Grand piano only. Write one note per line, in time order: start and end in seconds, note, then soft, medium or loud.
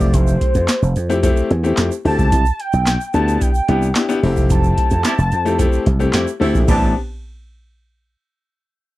0.00 0.74 A3 medium
0.00 0.74 C4 medium
0.00 0.74 E4 medium
0.00 0.77 G4 medium
1.09 1.18 A3 medium
1.09 1.18 C4 medium
1.09 1.18 E4 medium
1.09 1.18 G4 loud
1.23 1.48 A3 loud
1.23 1.48 C4 medium
1.23 1.48 E4 medium
1.23 1.48 G4 loud
1.63 1.89 A3 medium
1.63 1.89 C4 medium
1.63 1.89 E4 medium
1.63 1.89 G4 loud
2.05 2.32 A3 medium
2.05 2.32 C4 medium
2.05 2.32 E4 medium
2.05 2.32 G4 medium
3.14 3.47 B3 medium
3.14 3.48 D4 medium
3.14 3.48 E4 medium
3.14 3.48 G4 medium
3.68 3.85 B3 medium
3.68 3.85 D4 medium
3.68 3.85 E4 medium
3.68 3.85 G4 medium
3.95 4.04 B3 medium
3.95 4.04 D4 medium
3.95 4.04 E4 medium
3.95 4.04 G4 medium
4.09 4.17 B3 loud
4.09 4.18 D4 medium
4.09 4.18 E4 medium
4.09 4.18 G4 loud
4.23 5.10 A3 medium
4.23 5.10 C4 medium
4.23 5.10 E4 medium
4.23 5.10 G4 loud
5.45 5.54 A3 loud
5.45 5.54 C4 medium
5.45 5.54 E4 medium
5.45 5.54 G4 loud
5.58 5.84 A3 loud
5.58 5.84 C4 medium
5.58 5.84 E4 medium
5.58 5.84 G4 loud
5.99 6.25 A3 loud
5.99 6.25 C4 medium
5.99 6.25 E4 medium
5.99 6.25 G4 loud
6.40 6.68 A3 medium
6.40 6.67 C4 medium
6.40 6.68 E4 medium
6.40 6.67 G4 medium
6.68 6.94 B3 medium
6.68 6.94 C4 medium
6.68 6.94 D4 medium
6.68 6.94 G4 medium